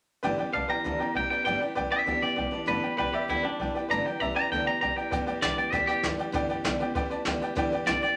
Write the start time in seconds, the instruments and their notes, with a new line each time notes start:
0.23 upright bass G1, steel-string acoustic guitar G2 D3 E3 G3 B3 G4, upright piano B4 D5 G5
0.38 steel-string acoustic guitar E3 G3 B3 G4, upright piano B4 D5 G5, muted upright bass stroke
0.52 upright bass B1, steel-string acoustic guitar E3 G3 B3 G4, upright piano B4 D5 A5, clean electric guitar F5
0.68 steel-string acoustic guitar G3 B3 G4, upright piano B4 D5 G5, clean electric guitar A#5, muted upright bass stroke
0.72 steel-string acoustic guitar E3
0.84 upright bass D2, steel-string acoustic guitar G2 D3 E3 G3 B3 G4, upright piano B4 D5 A5
0.99 steel-string acoustic guitar G3 B3 G4, upright piano B4 D5 G5, muted upright bass stroke
1.03 steel-string acoustic guitar E3
1.14 upright bass B1, steel-string acoustic guitar E3 G3 B3, upright piano B4 D5 G5, clean electric guitar G5
1.18 steel-string acoustic guitar G4
1.30 steel-string acoustic guitar E3 G3 B3 G4, upright piano B4 D5 G5, clean electric guitar G5, muted upright bass stroke
1.44 upright bass G1, steel-string acoustic guitar G2 D3 E3 G3, upright piano B4 D5 G5, clean electric guitar G5
1.48 steel-string acoustic guitar B3 G4
1.60 steel-string acoustic guitar G3 B3 G4, upright piano B4 D5 G5
1.64 steel-string acoustic guitar E3
1.75 upright bass B1, steel-string acoustic guitar E3 G3 B3 G4, upright piano B4 D5 G5
1.91 steel-string acoustic guitar G3 B3 G4, upright piano B4 D5 G5, clean electric guitar E5, muted upright bass stroke
1.95 steel-string acoustic guitar E3
2.06 upright bass D2, steel-string acoustic guitar G2 D3 E3 G3 B3 G4, upright piano B4 D5 G5
2.21 steel-string acoustic guitar E3 G3 B3 G4, upright piano B4 D5 G5, clean electric guitar D5, muted upright bass stroke
2.36 upright bass B1, steel-string acoustic guitar E3 G3 B3 G4, upright piano B4 D5 G5
2.51 steel-string acoustic guitar E3 G3 B3 G4, upright piano B4 D5 A5, muted upright bass stroke
2.66 upright bass G1, steel-string acoustic guitar G2 D3 E3 G3 B3 G4, upright piano B4 D5 A5, clean electric guitar B4
2.82 steel-string acoustic guitar E3 G3 B3 G4, upright piano B4 D5 G5
2.97 upright bass B1, steel-string acoustic guitar E3 G3 B3 G4, upright piano B4 D5 G5, clean electric guitar B4
3.12 steel-string acoustic guitar E3 G3 B3 G4, clean electric guitar G4, upright piano B4 D5 E5, muted upright bass stroke
3.28 upright bass D2, steel-string acoustic guitar G2 D3 E3 G3 B3 G4, clean electric guitar E4, upright piano B4 D5 G5
3.43 steel-string acoustic guitar G3 B3 G4, clean electric guitar D4, upright piano B4 D5 G5, muted upright bass stroke
3.59 upright bass B1, steel-string acoustic guitar E3 G3 B3 G4, upright piano B4 D5 G5
3.75 steel-string acoustic guitar G3 B3 G4, upright piano B4 D5 G5
3.79 steel-string acoustic guitar E3
3.89 upright bass G1, steel-string acoustic guitar G2 D3 E3 G3, upright piano B4 D5 A5, clean electric guitar A#5
3.93 steel-string acoustic guitar B3 G4
4.05 steel-string acoustic guitar B3 G4, upright piano B4 D5 G5, clean electric guitar G5, muted upright bass stroke
4.09 steel-string acoustic guitar E3 G3
4.20 upright bass B1, steel-string acoustic guitar G3 B3, upright piano B4 D5 E5, clean electric guitar A#5
4.24 steel-string acoustic guitar G4
4.34 steel-string acoustic guitar B3 G4, upright piano B4 D5 G5, clean electric guitar A#5
4.39 steel-string acoustic guitar E3 G3
4.50 upright bass D2, steel-string acoustic guitar G2 D3 E3, upright piano B4 D5 A5, clean electric guitar G5
4.54 steel-string acoustic guitar G3 B3 G4
4.64 steel-string acoustic guitar B3 G4, upright piano B4 D5 G5, clean electric guitar A#5
4.69 steel-string acoustic guitar E3 G3
4.81 upright bass B1, steel-string acoustic guitar E3 G3 B3, upright piano B4 D5 G5, clean electric guitar A#5
4.85 steel-string acoustic guitar G4
4.96 steel-string acoustic guitar G3 B3 G4, upright piano B4 D5 G5, clean electric guitar G5, muted upright bass stroke
5.00 steel-string acoustic guitar E3
5.11 upright bass G1, steel-string acoustic guitar G2 D3 E3 G3 B3 G4, upright piano B4 D5 G5, kick, closed hi-hat
5.26 upright bass G1, steel-string acoustic guitar E3 G3 B3 G4, upright piano B4 D5 G5, closed hi-hat
5.41 upright bass B1, steel-string acoustic guitar G2 D3 E3 G3 B3 G4, upright piano B4 D5 G5, clean electric guitar D5, snare, closed hi-hat
5.56 steel-string acoustic guitar E3 G3 B3 G4, upright piano B4 D5 G5, clean electric guitar D5, closed hi-hat
5.72 upright bass D2, steel-string acoustic guitar E3 G3 B3, upright piano B4 D5 G5, clean electric guitar E5, kick, snare, closed hi-hat
5.76 steel-string acoustic guitar G4
5.87 steel-string acoustic guitar E3 G3 B3 G4, clean electric guitar G4, upright piano B4 D5 G5, snare, closed hi-hat
6.03 upright bass D2, steel-string acoustic guitar G2 D3 E3 G3 B3 G4, upright piano B4 D5 G5, snare, closed hi-hat
6.18 steel-string acoustic guitar E3 G3 B3 G4, upright piano B4 D5 G5, muted upright bass stroke, closed hi-hat
6.32 steel-string acoustic guitar G2 D3 E3 G3 B3 G4, upright piano B4 D5 G5, kick, closed hi-hat
6.48 upright bass G1, steel-string acoustic guitar E3 G3 B3 G4, upright piano B4 D5 G5, closed hi-hat
6.64 upright bass B1, steel-string acoustic guitar G2 D3 E3 G3 B3 G4, upright piano B4 D5 G5, snare, closed hi-hat
6.79 steel-string acoustic guitar E3 G3 B3 G4, upright piano B4 D5 G5, closed hi-hat
6.95 upright bass D2, steel-string acoustic guitar E3 G3 B3 G4, upright piano B4 D5 G5, kick, closed hi-hat
7.10 steel-string acoustic guitar E3 G3 B3 G4, upright piano B4 D5 A5, muted upright bass stroke, closed hi-hat
7.25 upright bass D2, steel-string acoustic guitar G2 D3 E3 G3 B3 G4, upright piano B4 D5 G5, snare, closed hi-hat
7.40 steel-string acoustic guitar E3 G3 B3 G4, upright piano B4 D5 G5, muted upright bass stroke, closed hi-hat
7.55 steel-string acoustic guitar G2 D3 E3 G3 B3 G4, upright piano B4 D5 G5, kick, closed hi-hat
7.70 upright bass G1, steel-string acoustic guitar E3 G3 B3 G4, upright piano B4 D5, closed hi-hat
7.75 upright piano G5
7.85 upright bass B1, steel-string acoustic guitar G2 D3 E3 G3 B3 G4, upright piano B4 D5, clean electric guitar D5, snare, closed hi-hat
7.89 upright piano G5
8.01 steel-string acoustic guitar E3 G3 B3 G4, upright piano B4 D5 G5, clean electric guitar D5, muted upright bass stroke, closed hi-hat